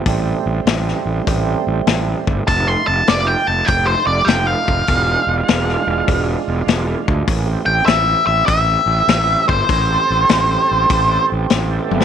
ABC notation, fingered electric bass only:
X:1
M:4/4
L:1/8
Q:"Swing" 1/4=100
K:Am
V:1 name="Fingered electric bass" clef=bass
A,,, A,,, A,,, A,,, A,,, A,,, A,,, G,,, | F,,, F,,, F,,, F,,, F,,, F,,, F,,, F,,, | E,,, E,,, E,,, E,,, E,,, E,,, E,,, D,, | A,,, A,,, A,,, A,,, A,,, A,,, A,,, G,,, |
A,,, A,,, A,,, A,,, A,,, A,,, A,,, G,,, |]